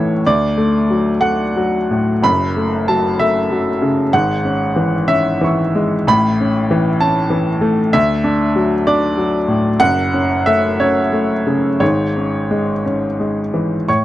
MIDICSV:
0, 0, Header, 1, 2, 480
1, 0, Start_track
1, 0, Key_signature, 3, "minor"
1, 0, Tempo, 637620
1, 184, Time_signature, 6, 3, 24, 8
1, 666, Tempo, 674916
1, 1626, Tempo, 630252
1, 3546, Tempo, 659341
1, 4506, Tempo, 620476
1, 7386, Tempo, 660066
1, 8346, Tempo, 687285
1, 10392, End_track
2, 0, Start_track
2, 0, Title_t, "Upright piano"
2, 0, Program_c, 0, 0
2, 0, Control_c, 0, 64, 127
2, 0, Note_on_c, 0, 33, 59
2, 0, Note_on_c, 0, 45, 61
2, 0, Note_on_c, 0, 52, 42
2, 0, Note_on_c, 0, 57, 50
2, 0, Note_on_c, 0, 64, 52
2, 0, Note_on_c, 0, 73, 75
2, 0, Note_on_c, 0, 76, 69
2, 0, Note_on_c, 0, 78, 96
2, 92, Note_off_c, 0, 57, 0
2, 152, Note_off_c, 0, 33, 0
2, 157, Note_off_c, 0, 45, 0
2, 184, Note_off_c, 0, 73, 0
2, 189, Note_off_c, 0, 52, 0
2, 197, Control_c, 0, 64, 0
2, 199, Note_on_c, 0, 74, 91
2, 200, Note_off_c, 0, 64, 0
2, 201, Note_off_c, 0, 78, 0
2, 201, Note_on_c, 0, 38, 63
2, 204, Note_off_c, 0, 76, 0
2, 326, Control_c, 0, 64, 127
2, 434, Note_on_c, 0, 57, 52
2, 679, Note_on_c, 0, 54, 50
2, 809, Note_off_c, 0, 57, 0
2, 895, Note_on_c, 0, 78, 84
2, 898, Note_on_c, 0, 57, 47
2, 906, Note_off_c, 0, 74, 0
2, 1047, Note_off_c, 0, 54, 0
2, 1150, Note_on_c, 0, 54, 52
2, 1285, Note_off_c, 0, 57, 0
2, 1394, Note_on_c, 0, 45, 52
2, 1537, Note_off_c, 0, 54, 0
2, 1606, Note_off_c, 0, 38, 0
2, 1619, Note_on_c, 0, 30, 63
2, 1625, Note_off_c, 0, 78, 0
2, 1627, Note_on_c, 0, 83, 98
2, 1629, Note_on_c, 0, 42, 68
2, 1631, Note_off_c, 0, 45, 0
2, 1640, Control_c, 0, 64, 0
2, 1772, Control_c, 0, 64, 127
2, 1880, Note_on_c, 0, 57, 48
2, 2115, Note_off_c, 0, 83, 0
2, 2119, Note_on_c, 0, 81, 84
2, 2124, Note_on_c, 0, 54, 58
2, 2259, Note_off_c, 0, 57, 0
2, 2352, Note_off_c, 0, 81, 0
2, 2357, Note_on_c, 0, 76, 84
2, 2364, Note_on_c, 0, 57, 49
2, 2496, Note_off_c, 0, 54, 0
2, 2601, Note_on_c, 0, 54, 52
2, 2738, Note_off_c, 0, 57, 0
2, 2833, Note_on_c, 0, 49, 50
2, 2981, Note_off_c, 0, 54, 0
2, 3036, Note_off_c, 0, 30, 0
2, 3042, Note_off_c, 0, 42, 0
2, 3071, Note_on_c, 0, 78, 92
2, 3072, Note_on_c, 0, 32, 62
2, 3073, Note_off_c, 0, 49, 0
2, 3074, Note_off_c, 0, 76, 0
2, 3076, Note_on_c, 0, 44, 65
2, 3084, Control_c, 0, 64, 0
2, 3191, Control_c, 0, 64, 127
2, 3313, Note_on_c, 0, 61, 51
2, 3550, Note_on_c, 0, 52, 55
2, 3686, Note_off_c, 0, 61, 0
2, 3776, Note_off_c, 0, 78, 0
2, 3780, Note_on_c, 0, 61, 56
2, 3781, Note_on_c, 0, 76, 88
2, 3919, Note_off_c, 0, 52, 0
2, 4014, Note_off_c, 0, 76, 0
2, 4024, Note_on_c, 0, 52, 54
2, 4025, Note_on_c, 0, 76, 43
2, 4047, Note_on_c, 0, 85, 45
2, 4066, Note_on_c, 0, 88, 45
2, 4165, Note_off_c, 0, 61, 0
2, 4271, Note_on_c, 0, 56, 56
2, 4416, Note_off_c, 0, 52, 0
2, 4478, Note_off_c, 0, 32, 0
2, 4480, Note_off_c, 0, 44, 0
2, 4483, Note_off_c, 0, 76, 0
2, 4494, Note_off_c, 0, 85, 0
2, 4503, Note_off_c, 0, 88, 0
2, 4504, Note_on_c, 0, 33, 69
2, 4511, Note_off_c, 0, 56, 0
2, 4512, Note_on_c, 0, 83, 108
2, 4514, Note_on_c, 0, 45, 69
2, 4522, Control_c, 0, 64, 0
2, 4632, Control_c, 0, 64, 127
2, 4763, Note_on_c, 0, 61, 54
2, 4995, Note_on_c, 0, 52, 64
2, 5138, Note_off_c, 0, 61, 0
2, 5226, Note_on_c, 0, 81, 85
2, 5229, Note_off_c, 0, 83, 0
2, 5229, Note_on_c, 0, 61, 53
2, 5369, Note_off_c, 0, 52, 0
2, 5455, Note_on_c, 0, 52, 61
2, 5603, Note_off_c, 0, 61, 0
2, 5696, Note_on_c, 0, 57, 60
2, 5838, Note_off_c, 0, 52, 0
2, 5904, Note_off_c, 0, 33, 0
2, 5909, Note_off_c, 0, 45, 0
2, 5936, Note_off_c, 0, 57, 0
2, 5937, Note_off_c, 0, 81, 0
2, 5943, Note_on_c, 0, 76, 98
2, 5946, Note_on_c, 0, 38, 72
2, 5952, Control_c, 0, 64, 0
2, 6084, Control_c, 0, 64, 127
2, 6182, Note_on_c, 0, 62, 58
2, 6427, Note_on_c, 0, 54, 63
2, 6563, Note_off_c, 0, 62, 0
2, 6659, Note_off_c, 0, 76, 0
2, 6668, Note_on_c, 0, 74, 93
2, 6670, Note_on_c, 0, 62, 56
2, 6806, Note_off_c, 0, 54, 0
2, 6905, Note_on_c, 0, 54, 54
2, 7050, Note_off_c, 0, 62, 0
2, 7142, Note_on_c, 0, 45, 54
2, 7292, Note_off_c, 0, 54, 0
2, 7361, Note_off_c, 0, 38, 0
2, 7384, Note_on_c, 0, 30, 64
2, 7386, Note_on_c, 0, 78, 111
2, 7387, Note_off_c, 0, 45, 0
2, 7391, Note_on_c, 0, 42, 73
2, 7392, Note_off_c, 0, 74, 0
2, 7398, Control_c, 0, 64, 0
2, 7500, Control_c, 0, 64, 127
2, 7632, Note_on_c, 0, 61, 58
2, 7859, Note_off_c, 0, 78, 0
2, 7869, Note_on_c, 0, 76, 92
2, 7872, Note_on_c, 0, 57, 60
2, 8011, Note_off_c, 0, 61, 0
2, 8107, Note_off_c, 0, 76, 0
2, 8114, Note_on_c, 0, 73, 79
2, 8117, Note_on_c, 0, 61, 54
2, 8255, Note_off_c, 0, 57, 0
2, 8353, Note_on_c, 0, 57, 51
2, 8495, Note_off_c, 0, 61, 0
2, 8590, Note_on_c, 0, 49, 48
2, 8733, Note_off_c, 0, 57, 0
2, 8798, Note_off_c, 0, 30, 0
2, 8801, Note_off_c, 0, 42, 0
2, 8814, Note_off_c, 0, 73, 0
2, 8821, Note_on_c, 0, 32, 57
2, 8824, Note_on_c, 0, 73, 74
2, 8830, Note_off_c, 0, 49, 0
2, 8831, Note_on_c, 0, 44, 62
2, 8841, Control_c, 0, 64, 0
2, 8991, Control_c, 0, 64, 127
2, 9080, Note_on_c, 0, 61, 44
2, 9317, Note_on_c, 0, 56, 53
2, 9459, Note_off_c, 0, 61, 0
2, 9548, Note_off_c, 0, 73, 0
2, 9559, Note_on_c, 0, 61, 46
2, 9697, Note_off_c, 0, 56, 0
2, 9799, Note_on_c, 0, 56, 47
2, 9941, Note_off_c, 0, 61, 0
2, 10036, Note_on_c, 0, 52, 42
2, 10183, Note_off_c, 0, 56, 0
2, 10241, Note_off_c, 0, 32, 0
2, 10246, Note_off_c, 0, 44, 0
2, 10273, Note_off_c, 0, 52, 0
2, 10279, Note_on_c, 0, 45, 49
2, 10279, Note_on_c, 0, 85, 72
2, 10283, Control_c, 0, 64, 0
2, 10284, Note_on_c, 0, 73, 55
2, 10392, Note_off_c, 0, 45, 0
2, 10392, Note_off_c, 0, 73, 0
2, 10392, Note_off_c, 0, 85, 0
2, 10392, End_track
0, 0, End_of_file